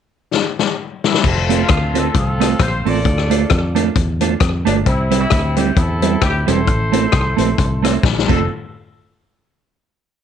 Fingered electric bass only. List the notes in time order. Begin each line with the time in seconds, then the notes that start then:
1.24 F1
1.69 D2
2.15 C2
2.59 A#1
2.86 A1
3.05 D2
3.51 F2
3.96 E2
4.40 F2
4.67 G1
4.86 C2
5.32 D2
5.76 E2
6.22 D2
6.48 E1
6.67 A1
7.13 C2
7.38 A#1
7.59 C2
8.03 A#1
8.29 F1